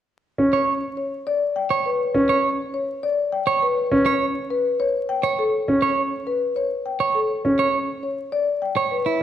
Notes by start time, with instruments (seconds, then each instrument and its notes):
0.38 grand piano C#4
0.53 clean electric guitar C#5
0.97 marimba C#5
1.27 marimba D5
1.56 marimba G5
1.70 clean electric guitar C#5
1.86 marimba B4
2.14 grand piano C#4
2.29 clean electric guitar C#5
2.74 marimba C#5
3.03 marimba D5
3.32 marimba G5
3.47 clean electric guitar C#5
3.62 marimba B4
3.91 grand piano C#4
4.06 clean electric guitar C#5
4.50 marimba B4
4.80 marimba C#5
5.09 marimba G5
5.23 clean electric guitar C#5
5.39 marimba A4
5.68 grand piano C#4
5.82 clean electric guitar C#5
6.27 marimba B4
6.56 marimba C#5
6.86 marimba G5
7.00 clean electric guitar C#5
7.15 marimba A4
7.45 grand piano C#4
7.59 clean electric guitar C#5
8.03 marimba C#5
8.32 marimba D5
8.62 marimba G5
8.77 clean electric guitar C#5
8.91 marimba B4
9.06 clean electric guitar E4